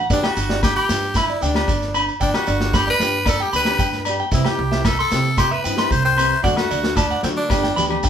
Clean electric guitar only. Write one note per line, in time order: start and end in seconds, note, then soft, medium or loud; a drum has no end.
0.11 0.19 D5 loud
0.23 0.31 G5 medium
0.50 0.58 D5 medium
0.77 0.85 B5 medium
1.17 1.24 B5 medium
1.30 1.37 D5 medium
1.43 1.51 G5 medium
1.94 2.03 B5 medium
2.21 2.29 G5 loud
2.47 2.56 D5 medium
2.74 2.82 B5 medium
2.87 2.95 D5 medium
3.26 3.35 D5 medium
3.40 3.48 G5 medium
3.53 3.61 B5 medium
3.80 3.88 G5 medium
4.06 4.14 D5 medium
4.20 4.28 G5 medium
4.32 muted clean electric guitar stroke loud
4.46 4.54 G5 medium
4.72 4.80 E5 medium
4.99 5.07 C6 medium
5.38 5.46 C6 medium
5.51 5.59 E5 medium
5.64 5.73 G5 medium
5.78 5.86 C6 medium
6.05 6.13 G5 medium
6.18 6.26 C6 medium
6.44 6.52 F#5 loud
6.71 6.79 D5 medium
6.97 7.05 A5 medium
7.11 7.19 F#5 medium
7.50 7.58 D5 medium
7.64 7.72 G5 medium
7.76 7.85 B5 medium
8.04 8.10 G5 medium